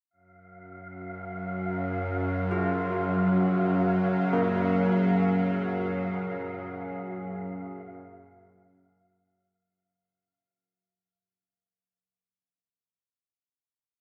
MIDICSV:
0, 0, Header, 1, 5, 480
1, 0, Start_track
1, 0, Key_signature, 6, "major"
1, 0, Tempo, 500000
1, 13448, End_track
2, 0, Start_track
2, 0, Title_t, "Synth texture"
2, 0, Program_c, 0, 99
2, 100, Note_on_c, 0, 77, 73
2, 9341, Note_off_c, 0, 77, 0
2, 13448, End_track
3, 0, Start_track
3, 0, Title_t, "Church bells"
3, 0, Program_c, 1, 14
3, 2412, Note_on_c, 1, 65, 53
3, 4158, Note_on_c, 1, 58, 64
3, 9321, Note_off_c, 1, 65, 0
3, 11058, Note_off_c, 1, 58, 0
3, 13448, End_track
4, 0, Start_track
4, 0, Title_t, "Ambient pad"
4, 0, Program_c, 2, 92
4, 86, Note_on_c, 2, 61, 72
4, 1259, Note_on_c, 2, 54, 64
4, 2091, Note_on_c, 2, 68, 70
4, 9310, Note_off_c, 2, 61, 0
4, 9321, Note_off_c, 2, 54, 0
4, 9322, Note_off_c, 2, 68, 0
4, 13448, End_track
5, 0, Start_track
5, 0, Title_t, "Synth drone"
5, 0, Program_c, 3, 95
5, 121, Note_on_c, 3, 54, 70
5, 126, Note_on_c, 3, 42, 71
5, 9443, Note_off_c, 3, 54, 0
5, 9445, Note_off_c, 3, 42, 0
5, 13448, End_track
0, 0, End_of_file